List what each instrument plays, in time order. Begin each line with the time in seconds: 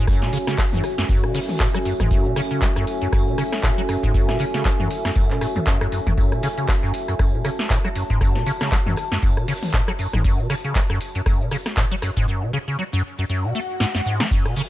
Already playing: analog synth pad C#4 F#4 A4 E5, ambient pad F#4 C#5 G#5
0.07 acid bass F#2, kick, cross-stick, closed hi-hat, tambourine, shaker
0.22 acid bass B2, snare, shaker
0.33 acid bass C#3, open hi-hat, tambourine, shaker
0.47 acid bass C#3, cross-stick, snare, closed hi-hat, shaker
0.58 acid bass F#3, kick, snare, clap, closed hi-hat, tambourine, shaker
0.73 acid bass F#2, mid tom, shaker
0.83 cross-stick, open hi-hat, tambourine, shaker
0.98 acid bass F#2, snare, closed hi-hat, shaker
1.09 acid bass F#2, kick, closed hi-hat, tambourine, shaker
1.24 acid bass B2, cross-stick, shaker
1.34 acid bass C#3, snare, open hi-hat, tambourine, shaker
1.42 snare, tambourine
1.49 snare, closed hi-hat, mid tom, tambourine, shaker
1.54 snare, tambourine
1.60 acid bass A2, kick, cross-stick, clap, closed hi-hat, shaker
1.74 acid bass F#3, cross-stick, shaker
1.85 acid bass F#2, open hi-hat, tambourine, shaker
2.00 acid bass G#2, kick, cross-stick, closed hi-hat, mid tom, shaker
2.11 acid bass F#2, kick, closed hi-hat, tambourine, shaker
2.25 acid bass B2, shaker
2.36 acid bass C#3, cross-stick, snare, open hi-hat, tambourine, shaker
2.51 acid bass C#3, closed hi-hat, shaker
2.62 acid bass F#3, kick, snare, clap, closed hi-hat, tambourine, shaker
2.76 acid bass F#2, cross-stick, shaker
2.87 open hi-hat, tambourine, shaker
3.01 acid bass F#2, closed hi-hat, shaker
3.13 acid bass F#2, kick, cross-stick, closed hi-hat, tambourine, shaker
3.27 acid bass B2, shaker
3.38 acid bass C#3, cross-stick, open hi-hat, tambourine, shaker
3.53 cross-stick, snare, closed hi-hat, shaker
3.63 acid bass A2, kick, snare, clap, closed hi-hat, tambourine, shaker
3.78 acid bass F#3, shaker
3.89 acid bass F#2, cross-stick, open hi-hat, tambourine, shaker
4.03 acid bass G#2, kick, closed hi-hat, shaker
4.14 acid bass F#2, kick, closed hi-hat, tambourine, shaker
4.29 acid bass B2, cross-stick, snare, shaker
4.39 acid bass C#3, open hi-hat, tambourine, shaker
4.54 acid bass C#3, snare, closed hi-hat, shaker
4.65 acid bass F#3, kick, cross-stick, snare, clap, closed hi-hat, tambourine, shaker
4.80 acid bass F#2, mid tom, shaker
4.90 open hi-hat, tambourine, shaker
5.05 acid bass F#2, cross-stick, snare, closed hi-hat, shaker
5.15 acid bass F#2, kick, closed hi-hat, tambourine, shaker
5.30 acid bass B2, clap, shaker
5.41 acid bass A2, cross-stick, snare, open hi-hat, tambourine, shaker
5.56 acid bass F#2, closed hi-hat, mid tom, shaker
5.66 acid bass F#2, kick, snare, clap, closed hi-hat, tambourine, shaker
5.81 acid bass F#2, cross-stick, shaker
5.92 acid bass F#2, open hi-hat, tambourine, shaker
6.07 acid bass F#2, kick, closed hi-hat, mid tom, shaker
6.18 acid bass F#2, kick, closed hi-hat, tambourine, shaker
6.32 acid bass B2, cross-stick, shaker
6.43 acid bass C#3, snare, open hi-hat, tambourine, shaker
6.58 acid bass C#3, closed hi-hat, shaker
6.67 acid bass F#3, kick, cross-stick, snare, clap, closed hi-hat, tambourine, shaker
6.83 acid bass F#2, shaker
6.94 open hi-hat, tambourine, shaker
7.08 acid bass F#2, cross-stick, closed hi-hat, shaker
7.17 acid bass F#2, ambient pad A5, kick, cross-stick, closed hi-hat, tambourine, shaker
7.34 acid bass B2, shaker
7.45 acid bass C#3, cross-stick, open hi-hat, tambourine, shaker
7.59 snare, closed hi-hat, shaker
7.70 acid bass A2, kick, snare, clap, closed hi-hat, tambourine, shaker
7.85 acid bass F#3, cross-stick, shaker
7.96 acid bass F#2, open hi-hat, tambourine, shaker
8.10 acid bass G#2, kick, closed hi-hat, shaker
8.21 acid bass F#2, kick, cross-stick, closed hi-hat, tambourine, shaker
8.35 acid bass B2, snare, shaker
8.46 acid bass C#3, open hi-hat, tambourine, shaker
8.61 acid bass C#3, cross-stick, snare, closed hi-hat, shaker
8.72 acid bass F#3, kick, snare, clap, closed hi-hat, tambourine, shaker
8.86 acid bass F#2, mid tom, shaker
8.96 cross-stick, open hi-hat, tambourine, shaker
9.12 acid bass F#2, snare, closed hi-hat, shaker
9.23 acid bass F#2, kick, closed hi-hat, tambourine, shaker
9.37 acid bass B2, cross-stick, shaker
9.48 acid bass C#3, snare, open hi-hat, tambourine, shaker
9.55 snare, tambourine
9.63 snare, closed hi-hat, mid tom, tambourine, shaker
9.68 snare, tambourine
9.74 acid bass A2, kick, cross-stick, snare, clap, closed hi-hat, shaker
9.88 acid bass F#3, cross-stick, shaker
9.99 acid bass F#2, open hi-hat, tambourine, shaker
10.13 acid bass G#2, kick, cross-stick, closed hi-hat, mid tom, shaker
10.24 acid bass F#2, kick, closed hi-hat, tambourine, shaker
10.39 acid bass B2, shaker
10.50 acid bass C#3, cross-stick, snare, open hi-hat, tambourine, shaker
10.64 acid bass C#3, closed hi-hat, shaker
10.75 acid bass F#3, kick, snare, clap, closed hi-hat, tambourine, shaker
10.90 acid bass F#2, cross-stick, shaker
11.01 open hi-hat, tambourine, shaker
11.15 acid bass F#2, closed hi-hat, shaker
11.26 acid bass F#2, kick, cross-stick, closed hi-hat, tambourine, shaker
11.41 acid bass B2, shaker
11.51 acid bass C#3, cross-stick, snare, open hi-hat, tambourine, shaker
11.66 cross-stick, snare, closed hi-hat, shaker
11.77 acid bass A2, kick, snare, clap, closed hi-hat, tambourine, shaker
11.91 acid bass F#3, shaker
12.02 acid bass F#2, cross-stick, snare, open hi-hat, tambourine, shaker
12.17 acid bass G#2, kick, closed hi-hat, shaker
12.28 acid bass F#2
12.42 acid bass B2
12.53 acid bass C#3
12.68 acid bass C#3
12.79 acid bass F#3
12.93 acid bass F#2
13.19 acid bass F#2
13.29 acid bass F#2, swell
13.44 acid bass B2
13.55 acid bass A3
13.80 acid bass G#2, snare
13.95 acid bass F#2, snare
14.06 acid bass G#2
14.20 acid bass F#3, snare
14.31 acid bass F#2, analog synth pad C#4 F#4 A4 E5, ambient pad F#4, kick, closed hi-hat, crash, tambourine, shaker
14.46 acid bass B2, cross-stick, closed hi-hat, shaker
14.56 acid bass C#3, snare, open hi-hat, tambourine, shaker
14.62 ambient pad C#5